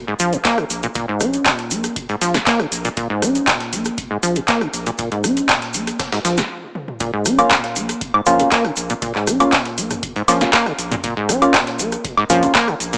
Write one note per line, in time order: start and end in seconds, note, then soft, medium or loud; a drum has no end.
0.07 0.14 G#2 medium
0.19 0.37 A#1 medium
0.19 0.34 F3 medium
0.19 closed hi-hat medium
0.19 open hi-hat loud
0.19 shaker medium
0.33 0.37 A#2 medium
0.33 closed hi-hat soft
0.33 shaker medium
0.45 0.59 A#3 loud
0.45 kick loud
0.45 snare loud
0.45 clap loud
0.45 closed hi-hat medium
0.45 shaker soft
0.58 0.65 C#3 loud
0.58 cross-stick medium
0.58 closed hi-hat soft
0.70 0.87 A#1 loud
0.70 closed hi-hat medium
0.70 open hi-hat medium
0.70 shaker loud
0.83 0.87 A#2 medium
0.83 closed hi-hat soft
0.83 shaker medium
0.95 1.06 A#2 medium
0.95 kick loud
0.95 closed hi-hat medium
0.95 shaker soft
1.08 1.22 G#2 medium
1.20 1.38 A#1 loud
1.20 1.47 C#4 medium
1.20 cross-stick medium
1.20 closed hi-hat medium
1.20 open hi-hat loud
1.20 shaker medium
1.33 closed hi-hat medium
1.33 shaker soft
1.45 1.72 A#2 medium
1.45 kick loud
1.45 snare loud
1.45 clap loud
1.45 closed hi-hat medium
1.45 shaker soft
1.59 snare soft
1.59 closed hi-hat soft
1.71 1.88 A#1 medium
1.71 1.98 A#3 loud
1.71 closed hi-hat medium
1.71 open hi-hat medium
1.71 shaker medium
1.84 cross-stick soft
1.84 closed hi-hat soft
1.84 closed hi-hat medium
1.84 shaker medium
1.96 2.07 A#2 medium
1.96 kick loud
1.96 closed hi-hat medium
1.96 shaker soft
2.09 2.16 G#2 medium
2.09 closed hi-hat soft
2.21 2.39 A#1 medium
2.21 2.36 F3 medium
2.21 snare medium
2.21 closed hi-hat medium
2.21 open hi-hat loud
2.21 shaker medium
2.34 2.38 A#2 medium
2.34 snare medium
2.34 closed hi-hat soft
2.34 shaker medium
2.47 2.61 A#3 loud
2.47 kick loud
2.47 snare loud
2.47 clap loud
2.47 closed hi-hat medium
2.47 shaker soft
2.60 2.66 C#3 loud
2.60 cross-stick medium
2.60 closed hi-hat soft
2.72 2.89 A#1 loud
2.72 closed hi-hat medium
2.72 open hi-hat medium
2.72 shaker medium
2.85 2.89 A#2 medium
2.85 closed hi-hat medium
2.85 shaker medium
2.97 3.08 A#2 medium
2.97 kick loud
2.97 closed hi-hat medium
2.97 shaker soft
3.10 3.24 G#2 medium
3.22 3.40 A#1 loud
3.22 3.49 C#4 medium
3.22 cross-stick medium
3.22 closed hi-hat medium
3.22 open hi-hat loud
3.22 shaker medium
3.35 closed hi-hat medium
3.35 shaker soft
3.47 3.74 A#2 medium
3.47 kick loud
3.47 snare loud
3.47 clap loud
3.47 closed hi-hat medium
3.47 shaker soft
3.60 snare medium
3.60 closed hi-hat soft
3.73 3.90 A#1 medium
3.73 3.99 A#3 loud
3.73 closed hi-hat medium
3.73 open hi-hat medium
3.73 shaker medium
3.85 cross-stick soft
3.85 closed hi-hat medium
3.85 shaker medium
3.98 4.09 A#2 medium
3.98 kick loud
3.98 closed hi-hat medium
3.98 shaker soft
4.11 4.18 G#2 medium
4.23 4.40 A#1 medium
4.23 4.37 F3 medium
4.23 closed hi-hat medium
4.23 open hi-hat loud
4.23 shaker medium
4.36 4.40 A#2 medium
4.36 closed hi-hat medium
4.36 shaker soft
4.48 4.63 A#3 loud
4.48 kick loud
4.48 snare loud
4.48 clap loud
4.48 closed hi-hat medium
4.48 shaker soft
4.61 4.68 C#3 loud
4.61 cross-stick medium
4.61 closed hi-hat soft
4.74 4.91 A#1 loud
4.74 closed hi-hat medium
4.74 open hi-hat medium
4.74 shaker loud
4.86 4.91 A#2 medium
4.86 closed hi-hat medium
4.86 shaker medium
4.98 5.09 A#2 medium
4.98 kick loud
4.98 closed hi-hat medium
4.98 shaker soft
5.12 5.25 G#2 medium
5.12 closed hi-hat soft
5.24 5.41 A#1 loud
5.24 5.51 C#4 medium
5.24 cross-stick medium
5.24 closed hi-hat medium
5.24 open hi-hat loud
5.24 shaker medium
5.37 closed hi-hat medium
5.37 shaker soft
5.49 5.76 A#2 medium
5.49 kick loud
5.49 snare loud
5.49 clap loud
5.49 closed hi-hat medium
5.49 shaker soft
5.62 snare soft
5.62 closed hi-hat soft
5.74 5.92 A#1 medium
5.74 6.01 A#3 loud
5.74 closed hi-hat medium
5.74 open hi-hat medium
5.74 shaker medium
5.87 cross-stick soft
5.87 closed hi-hat soft
5.87 closed hi-hat medium
5.87 shaker soft
5.99 6.10 A#2 medium
5.99 kick loud
5.99 snare loud
5.99 closed hi-hat medium
5.99 shaker soft
6.12 6.19 G#2 medium
6.12 snare loud
6.12 closed hi-hat medium
6.25 6.42 A#1 medium
6.25 6.39 F3 medium
6.25 snare loud
6.25 closed hi-hat medium
6.25 open hi-hat loud
6.25 shaker medium
6.37 6.42 A#2 medium
6.37 snare medium
6.37 closed hi-hat medium
6.37 shaker medium
6.75 high tom medium
6.88 mid tom medium
7.00 7.11 A#2 medium
7.00 kick loud
7.00 closed hi-hat medium
7.00 shaker soft
7.13 7.27 G#2 medium
7.25 7.43 A#1 loud
7.25 7.52 C#4 medium
7.25 cross-stick medium
7.25 closed hi-hat medium
7.25 open hi-hat loud
7.25 shaker loud
7.39 7.52 A#3 medium
7.39 7.52 C#4 medium
7.39 7.52 F4 loud
7.39 closed hi-hat medium
7.39 high woodblock medium
7.39 shaker medium
7.51 7.78 A#2 medium
7.51 kick loud
7.51 snare loud
7.51 clap loud
7.51 closed hi-hat medium
7.51 shaker soft
7.64 snare medium
7.64 closed hi-hat soft
7.76 7.93 A#1 medium
7.76 8.03 A#3 loud
7.76 closed hi-hat medium
7.76 open hi-hat medium
7.76 shaker medium
7.89 cross-stick soft
7.89 closed hi-hat medium
7.89 shaker medium
8.01 8.12 A#2 medium
8.01 kick loud
8.01 closed hi-hat medium
8.01 shaker soft
8.14 8.21 G#2 medium
8.14 high woodblock medium
8.26 8.44 A#1 medium
8.26 8.41 F3 medium
8.26 8.49 A#3 medium
8.26 8.49 C#4 medium
8.26 8.49 F4 loud
8.26 closed hi-hat medium
8.26 mid tom medium
8.26 open hi-hat loud
8.26 shaker medium
8.39 8.43 A#2 medium
8.39 closed hi-hat medium
8.39 shaker medium
8.52 8.66 A#3 loud
8.52 kick loud
8.52 snare loud
8.52 clap loud
8.52 closed hi-hat medium
8.52 shaker soft
8.65 8.71 C#3 loud
8.65 cross-stick medium
8.65 closed hi-hat soft
8.76 8.94 A#1 loud
8.76 closed hi-hat medium
8.76 open hi-hat medium
8.76 shaker loud
8.90 8.94 A#2 medium
8.90 closed hi-hat medium
8.90 shaker medium
9.02 9.13 A#2 medium
9.02 kick loud
9.02 closed hi-hat medium
9.02 shaker soft
9.15 9.29 G#2 medium
9.15 clap soft
9.27 9.45 A#1 loud
9.27 9.54 C#4 medium
9.27 cross-stick medium
9.27 closed hi-hat medium
9.27 open hi-hat loud
9.27 shaker loud
9.40 9.54 A#3 medium
9.40 9.54 C#4 medium
9.40 9.54 F4 medium
9.40 closed hi-hat medium
9.40 high woodblock medium
9.40 shaker medium
9.52 9.79 A#2 medium
9.52 kick loud
9.52 snare loud
9.52 clap loud
9.52 closed hi-hat medium
9.52 shaker soft
9.65 snare soft
9.65 closed hi-hat soft
9.78 9.95 A#1 medium
9.78 10.04 A#3 loud
9.78 closed hi-hat medium
9.78 open hi-hat medium
9.78 shaker medium
9.90 cross-stick soft
9.90 closed hi-hat soft
9.90 closed hi-hat medium
9.90 mid tom medium
9.90 shaker medium
10.03 10.14 A#2 medium
10.03 kick loud
10.03 closed hi-hat medium
10.03 shaker soft
10.16 10.23 G#2 medium
10.16 closed hi-hat soft
10.28 10.45 A#1 loud
10.28 10.43 F3 medium
10.28 10.51 A#3 medium
10.28 10.51 C#4 medium
10.28 10.51 F4 loud
10.28 snare medium
10.28 closed hi-hat medium
10.28 open hi-hat loud
10.28 high woodblock medium
10.28 shaker loud
10.41 10.45 A#2 medium
10.41 snare medium
10.41 closed hi-hat medium
10.41 shaker medium
10.53 10.68 A#3 loud
10.53 kick loud
10.53 snare loud
10.53 clap loud
10.53 closed hi-hat medium
10.53 shaker soft
10.66 10.73 C#3 loud
10.66 cross-stick medium
10.66 closed hi-hat soft
10.79 10.96 A#1 loud
10.79 closed hi-hat medium
10.79 open hi-hat medium
10.79 shaker medium
10.91 10.96 A#2 medium
10.91 closed hi-hat medium
10.91 mid tom loud
10.91 shaker medium
11.04 11.14 A#2 medium
11.04 kick loud
11.04 closed hi-hat medium
11.04 shaker soft
11.17 11.30 G#2 medium
11.29 11.46 A#1 loud
11.29 11.56 C#4 medium
11.29 cross-stick medium
11.29 closed hi-hat medium
11.29 open hi-hat loud
11.29 shaker medium
11.42 11.56 A#3 medium
11.42 11.56 C#4 medium
11.42 11.56 F4 medium
11.42 closed hi-hat medium
11.42 high woodblock medium
11.42 shaker medium
11.54 11.81 A#2 medium
11.54 kick loud
11.54 snare loud
11.54 clap loud
11.54 closed hi-hat medium
11.54 shaker soft
11.67 snare medium
11.67 closed hi-hat soft
11.79 11.97 A#1 medium
11.79 12.06 A#3 loud
11.79 closed hi-hat medium
11.79 open hi-hat loud
11.79 shaker loud
11.92 cross-stick soft
11.92 closed hi-hat medium
11.92 shaker medium
12.05 12.15 A#2 medium
12.05 kick loud
12.05 closed hi-hat medium
12.05 shaker soft
12.17 12.24 G#2 medium
12.17 high woodblock medium
12.30 12.47 A#1 loud
12.30 12.44 F3 medium
12.30 12.52 A#3 medium
12.30 12.52 C#4 medium
12.30 12.52 F4 loud
12.30 closed hi-hat medium
12.30 mid tom medium
12.30 open hi-hat loud
12.30 shaker loud
12.43 12.47 A#2 medium
12.43 closed hi-hat medium
12.43 shaker medium
12.55 12.69 A#3 loud
12.55 kick loud
12.55 snare loud
12.55 clap loud
12.55 closed hi-hat medium
12.55 shaker soft
12.68 12.75 C#3 loud
12.68 cross-stick medium
12.68 closed hi-hat soft
12.80 12.97 A#1 loud
12.80 closed hi-hat medium
12.80 open hi-hat loud
12.80 shaker loud
12.93 12.97 A#2 medium
12.93 closed hi-hat medium
12.93 shaker medium